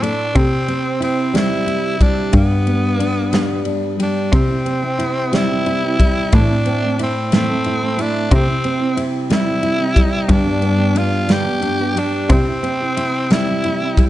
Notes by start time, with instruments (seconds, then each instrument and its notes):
Already playing: nylon-string guitar A2 C4 E4
0.02 nylon-string guitar A3, tenor saxophone D4, ride
0.35 nylon-string guitar C3, cello C3, tenor saxophone C4, kick, ride
0.68 nylon-string guitar C4, ride
1.00 tenor saxophone C4, nylon-string guitar E4, ride
1.34 nylon-string guitar G3, tenor saxophone E4, snare, ride
1.66 nylon-string guitar E4, ride
2.00 nylon-string guitar G3, tenor saxophone D4, kick, ride
2.32 nylon-string guitar G2, cello G2, tenor saxophone B3, kick, ride
2.67 nylon-string guitar B3, ride
2.99 nylon-string guitar D4, ride
3.33 nylon-string guitar G3, snare, ride
3.65 nylon-string guitar D4, ride
3.99 nylon-string guitar G3, tenor saxophone D4, ride
4.32 nylon-string guitar C3, cello C3, steel-string acoustic guitar C3 G3 C4 E4 G4, tenor saxophone C4, kick, ride
4.49 steel-string acoustic guitar C4 E4 G4
4.66 nylon-string guitar C4, ride
4.82 steel-string acoustic guitar C4 E4 G4
4.99 steel-string acoustic guitar G3 C4 E4 G4, nylon-string guitar E4, ride
5.32 steel-string acoustic guitar C3 G3 C4 E4 G4, nylon-string guitar G3, snare, ride
5.36 tenor saxophone E4
5.49 steel-string acoustic guitar C4 E4 G4
5.66 nylon-string guitar E4, ride
5.83 steel-string acoustic guitar C4 E4 G4
6.00 steel-string acoustic guitar G3 C4 E4 G4, nylon-string guitar G3, kick, ride
6.32 steel-string acoustic guitar A2 E3 A3 C4 E4 A4, nylon-string guitar A2, cello A2, tenor saxophone D4, kick, ride
6.49 steel-string acoustic guitar A3 C4 E4 A4
6.66 nylon-string guitar C4, ride
6.82 steel-string acoustic guitar A3 C4 E4 A4
6.99 steel-string acoustic guitar A3 C4 E4 A4, nylon-string guitar E4, ride
7.03 tenor saxophone C4
7.32 steel-string acoustic guitar A2 E3 A3 C4 E4 A4, nylon-string guitar A3, tenor saxophone C4, snare, ride
7.49 steel-string acoustic guitar A3 C4 E4 A4
7.64 nylon-string guitar E4, ride
7.81 steel-string acoustic guitar A3 C4 E4 A4
7.98 steel-string acoustic guitar A3 C4 E4 A4, nylon-string guitar A3, tenor saxophone D4, ride
8.31 steel-string acoustic guitar C3 G3 C4 E4 G4, nylon-string guitar C3, cello C3, tenor saxophone C4, kick, ride
8.47 steel-string acoustic guitar C4 E4 G4
8.64 nylon-string guitar C4, ride
8.79 steel-string acoustic guitar C4 E4 G4
8.96 steel-string acoustic guitar G3 C4 E4 G4, nylon-string guitar E4, ride
9.30 steel-string acoustic guitar C3 G3 C4 E4 G4, nylon-string guitar G3, tenor saxophone E4, snare, ride
9.45 steel-string acoustic guitar C4 E4 G4
9.63 nylon-string guitar E4, ride
9.78 steel-string acoustic guitar C4 E4 G4
9.95 steel-string acoustic guitar G3 C4 E4 G4, nylon-string guitar G3, kick, ride
10.29 steel-string acoustic guitar G2 D3 G3 B3 D4 G4, cello G2, nylon-string guitar G2, tenor saxophone D4, kick, ride
10.45 steel-string acoustic guitar G3 B3 D4 G4
10.61 nylon-string guitar B3, ride
10.78 steel-string acoustic guitar G3 B3 D4 G4
10.95 steel-string acoustic guitar G3 B3 D4 G4, nylon-string guitar D4, tenor saxophone F4, ride
11.28 steel-string acoustic guitar G2 D3 G3 B3 D4 G4, nylon-string guitar G3, tenor saxophone G4, snare, ride
11.46 steel-string acoustic guitar G3 B3 D4 G4
11.62 nylon-string guitar D4, ride
11.78 steel-string acoustic guitar G3 B3 D4 G4
11.96 nylon-string guitar G3, steel-string acoustic guitar G3 B3 D4 G4, tenor saxophone D4, ride
12.29 nylon-string guitar C3, steel-string acoustic guitar C3 G3 C4 E4 G4, cello C3, tenor saxophone C4, kick, ride
12.46 steel-string acoustic guitar C4 E4 G4
12.63 nylon-string guitar C4, ride
12.80 steel-string acoustic guitar C4 E4 G4
12.97 steel-string acoustic guitar G3 C4 E4 G4, nylon-string guitar E4, ride
13.30 steel-string acoustic guitar C3 G3 C4 E4 G4, nylon-string guitar G3, tenor saxophone E4, snare, ride
13.47 steel-string acoustic guitar C4 E4 G4
13.64 nylon-string guitar E4, ride
13.81 steel-string acoustic guitar C4 E4 G4
13.97 steel-string acoustic guitar G3 C4 E4 G4, nylon-string guitar G3, kick, ride